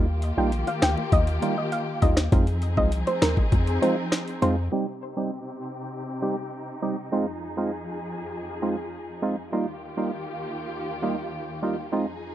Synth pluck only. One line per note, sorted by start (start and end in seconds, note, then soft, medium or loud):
0.38 0.51 G5 medium
0.68 0.81 F5 medium
0.83 0.96 G5 medium
1.13 1.26 D#5 medium
1.58 1.71 D#5 medium
1.72 1.86 F5 medium
2.02 2.16 D#5 medium
2.77 2.91 D#5 medium
3.07 3.20 C5 medium
3.22 3.36 A#4 medium
3.82 3.96 C5 medium
4.42 4.55 C5 medium